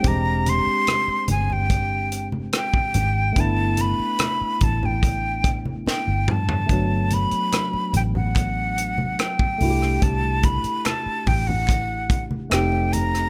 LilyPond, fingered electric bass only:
\new Staff \with { instrumentName = "Fingered electric bass" } { \clef bass \time 4/4 \key g \major \tempo 4 = 72 e,,8. r8. g,,4. r8 gis,,8 | g,,8. r8. a,,4. r16 g,,16 g,8 | g,,8. r8. a,,4. r8 c,8 | c,8. r8. a,,4. f,,4 | }